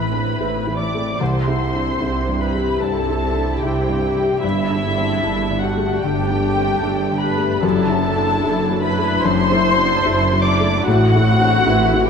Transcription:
Already playing: A1 A2 E3 A3 C4 D4 E4 A4 B4 C5 B5
0.12 D4
0.38 A1 A2 E4 C5
0.67 E3
0.78 C4 E4 A4 D5 D6
0.94 A3
1.18 C2 C3 C4 E4 C5 C6
1.48 E4
1.59 C4 E4
1.74 D4
2.00 C2 C3 E4 C5
2.29 G2
2.41 C4 E4 G4 B4 B5
2.55 G3
2.81 C2 G2 C3 G3 A4 A5
3.09 E4
3.21 C4 E4
3.36 D4
3.61 C2 C3 E4 G4 C5 G5
3.89 G2
4.02 C4 E4 G4
4.17 G3
4.41 G1 G2 E4 E5
4.70 D4
4.83 A3 D4
4.97 C4
5.23 G1 G2 D4 A4
5.50 D3
5.61 A3 D4 F#4 G4 F#5
5.77 A3
6.01 G1 G2 D3 G4 G5
6.30 D4
6.42 A3 D4
6.56 C4
6.82 G1 G2 D4 A4
7.11 D3
7.21 A3 D4 G4 B4 B5
7.37 A3
7.61 F#1 F#2 D4 E4 A4 A5
7.90 E4
8.03 D4 E4
8.16 D4
8.42 F#1 F#2 E4 A4
8.71 F#3
8.82 D4 E4 B4 B5
8.98 A3
9.23 F#1 F#2 C5 C6
9.52 E4
9.64 D4 E4
9.79 D4
10.04 F#1 F#2 E4 A4
10.33 F#3
10.44 D4 E4 D5 D6
10.60 A3
10.84 A1 A2 F#4 F#5
11.15 E4
11.25 C4 E4
11.41 D4
11.67 A1 A2 E4 B4
11.94 E3
12.06 C4 G4

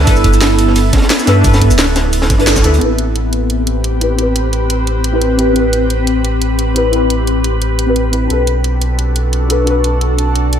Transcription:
Already playing: B3 D4 E4 A4 B4
0.04 G1 D4 E4, kick, closed hi-hat, ride, shaker
0.08 A4 B4
0.16 shaker
0.24 kick, closed hi-hat, ride
0.33 closed hi-hat, shaker
0.41 snare, closed hi-hat, ride, shaker
0.59 closed hi-hat, open hi-hat, ride
0.67 snare
0.76 closed hi-hat, ride, shaker
0.93 kick, snare, closed hi-hat, ride
0.97 snare, closed hi-hat
1.02 snare, closed hi-hat
1.10 snare, closed hi-hat, ride, shaker
1.19 snare, shaker
1.26 G2 D4 E4 A4 B4, snare, closed hi-hat, open hi-hat, ride, shaker
1.41 D4 E4, kick, closed hi-hat, ride, shaker
1.46 A4 B4
1.53 snare, closed hi-hat, shaker
1.62 kick, closed hi-hat, ride
1.70 D1, closed hi-hat, shaker
1.78 snare, closed hi-hat, ride, shaker
1.96 snare, closed hi-hat, open hi-hat, ride, shaker
2.13 closed hi-hat, ride, shaker
2.22 snare, closed hi-hat
2.30 G1, kick, snare, closed hi-hat, ride, shaker
2.38 D4 E4 A4 B4, closed hi-hat
2.47 snare, closed hi-hat, ride, shaker
2.56 kick, snare, closed hi-hat, shaker
2.63 D2 D4 E4 A4 B4, snare, open hi-hat, ride, shaker
2.74 closed hi-hat
2.78 A1 C4 E4 G4 B4, closed hi-hat
2.83 G4 B4
2.98 closed hi-hat
3.16 closed hi-hat
3.33 closed hi-hat
3.50 closed hi-hat
3.67 closed hi-hat
3.84 closed hi-hat
4.00 C4 E4 G4 B4, closed hi-hat
4.16 C4 E4, closed hi-hat
4.20 G4 B4
4.36 closed hi-hat
4.53 closed hi-hat
4.70 closed hi-hat
4.87 closed hi-hat
5.04 closed hi-hat
5.12 C4 E4 G4 B4
5.22 closed hi-hat
5.37 C4 E4 G4 B4, closed hi-hat
5.53 C4 E4, closed hi-hat
5.57 G4 B4
5.73 closed hi-hat
5.90 closed hi-hat
6.07 closed hi-hat
6.25 closed hi-hat
6.42 closed hi-hat
6.59 closed hi-hat
6.74 C4 E4 G4 B4, closed hi-hat
6.90 C4 E4, closed hi-hat
6.94 G4 B4
7.10 closed hi-hat
7.27 closed hi-hat
7.44 closed hi-hat
7.62 closed hi-hat
7.79 closed hi-hat
7.86 C4 E4 G4 B4
7.96 closed hi-hat
8.11 C4 E4 G4 B4, closed hi-hat
8.27 B1 D4 F#4 A4, closed hi-hat
8.31 A4 B4
8.47 closed hi-hat
8.64 closed hi-hat
8.82 closed hi-hat
8.99 closed hi-hat
9.16 closed hi-hat
9.33 closed hi-hat
9.48 D4 F#4 A4 B4, closed hi-hat
9.64 D4 F#4, closed hi-hat
9.68 A4 B4
9.84 closed hi-hat
10.01 closed hi-hat
10.18 closed hi-hat
10.36 closed hi-hat
10.53 closed hi-hat

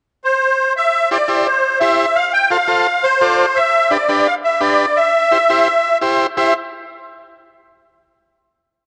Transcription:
0.24 C5
0.77 E5
1.11 E4 G4 C5 D5
1.28 E4 G4 C5
1.46 C5
1.80 E4 G4 C5 E5
2.15 F5
2.33 G5
2.51 F4 A4 C5 F5
2.67 F4 A4 C5
3.03 C5
3.21 F4 A4 D5
3.55 E5
3.91 D4 G4 B4 D5
4.09 D4 G4 B4
4.27 F5
4.44 E5
4.61 D4 G4 B4 D5
4.96 E5
5.31 E4 G4 C5
5.50 E4 G4 C5
6.01 E4 G4 C5
6.37 E4 G4 C5 E5

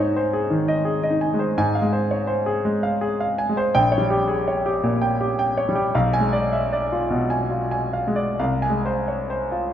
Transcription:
Already playing: G#2 G#3 D#4 C5 D#5 G#5
0.00 C#5
0.16 C5
0.33 G#4
0.50 D#3
0.68 D#5
0.85 G#4
1.03 D#5
1.10 D#4
1.21 G#5
1.34 G#3
1.39 C5
1.58 G#2 G#5
1.75 F5
1.82 G#3
1.93 C5
2.11 C#5
2.27 C5
2.46 G#4
2.65 G#3
2.83 F5
3.01 G#4
3.20 F5
3.38 G#5
3.49 G#3
3.57 C5
3.75 A#1 G5
3.92 C#5
3.98 G3
4.10 G4
4.28 G#4
4.48 C#5
4.66 G4
4.83 A#2
5.01 G5
5.21 G4
5.39 G5
5.57 C#5
5.69 G3
5.75 G4
5.95 B1 F5
6.13 G#5
6.19 G#3
6.33 D5
6.53 E5
6.73 D5
6.92 F4
7.10 B2
7.30 G#5
7.51 F4
7.71 G#5
7.93 F5
8.07 G#3
8.16 D5
8.39 C2 F5
8.62 G#5
8.70 G#3
8.86 C5
9.08 C#5
9.30 C5
9.52 F4

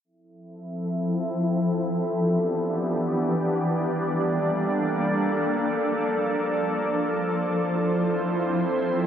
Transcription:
0.04 F3 C4 E4 A4 E5
1.86 E3 B3 D4 G4 D5
3.68 G3 A#3 A4
5.50 F3
7.32 C4 E4 C5

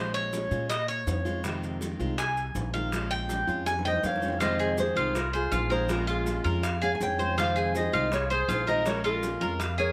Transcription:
Already playing: A#1 F3 G#3 C#4 F4 C5
0.14 C#5, high bongo, maracas
0.33 F3 G#3 C#4 F4, high bongo, maracas
0.51 A#2 G#3 C#4 F4, maracas
0.70 D#5, muted steel-string acoustic guitar stroke, high bongo, maracas
0.88 C#5, maracas
1.07 F2, high bongo, low bongo, maracas
1.25 G#3 C#4 F4, high bongo, maracas
1.44 C3 D#3 G#3 C4 F4, high bongo, maracas
1.62 high bongo, maracas
1.81 D#3 G#3 C4 F4, high bongo, maracas
1.99 C2 D#3 G#3 C4 F4, maracas
2.18 G#5, muted steel-string acoustic guitar stroke, high bongo, maracas
2.37 maracas
2.55 A#1, high bongo, low bongo, maracas
2.73 D#3 G#3 C4 F4 F5, high bongo, maracas
2.92 F3 G#3 C#4 F4, high bongo, maracas
3.11 G5, high bongo, maracas
3.29 F3 G#3 C#4 F4, high bongo, maracas
3.47 F2 G#3 C#4 F4, maracas
3.66 G#5, muted steel-string acoustic guitar stroke, high bongo, maracas
3.79 low bongo
3.85 C5 D#5 G5, maracas
3.91 low bongo
4.03 F2 C#5 F5, low bongo, maracas
4.16 low bongo
4.22 G#3 C#4 F4, maracas
4.28 low bongo
4.40 C3 D#3 G#3 C4 F4 C5 D#5, high bongo, maracas
4.59 G#4, high bongo, maracas
4.77 D#3 G#3 C4 F4 G#4 C5, high bongo, maracas
4.95 C2 D#3 G#3 C4 F4, maracas
5.14 F4 A#4, muted steel-string acoustic guitar stroke, high bongo, maracas
5.33 F4 G#4 C5, maracas
5.52 A#1 F4, high bongo, low bongo, maracas
5.70 D#3 G#3 C4 F4 G#4 A#4 C5, high bongo, maracas
5.88 F3 G#3 C#4 F4 A#4, high bongo, maracas
6.07 F4 G#4, high bongo, maracas
6.25 F3 G#3 C#4 F4, high bongo, maracas
6.44 F2 G#3 C#4 F4 A#4, maracas
6.63 F5, muted steel-string acoustic guitar stroke, high bongo, maracas
6.82 G#4 C#5 F5, maracas
6.94 F5 G#5
7.00 F2 C#5 G5, high bongo, low bongo, maracas
7.18 G#3 C#4 F4 C5, high bongo, maracas
7.37 C3 D#3 G#3 C4 F4 C5 F5, high bongo, maracas
7.56 G#4, high bongo, maracas
7.74 D#3 G#3 C4 F4 C5 D#5, high bongo, maracas
7.92 C2 D#3 G#3 C4 F4, maracas
8.12 G#4 C#5, muted steel-string acoustic guitar stroke, high bongo, maracas
8.30 G#4 C5, maracas
8.48 A#1 F4, high bongo, low bongo, maracas
8.67 D#3 G#3 C4 F4 A#4 C5 D#5, high bongo, maracas
8.85 F3 G#3 C#4 F4 A#4 C#5, high bongo, maracas
9.04 F4 A#4, high bongo, maracas
9.22 F3 G#3 C#4 F4, high bongo, maracas
9.41 F2 G#3 C#4 F4 A#4, maracas
9.60 F5, muted steel-string acoustic guitar stroke, high bongo, maracas
9.78 G#4 A#4 C#5, maracas

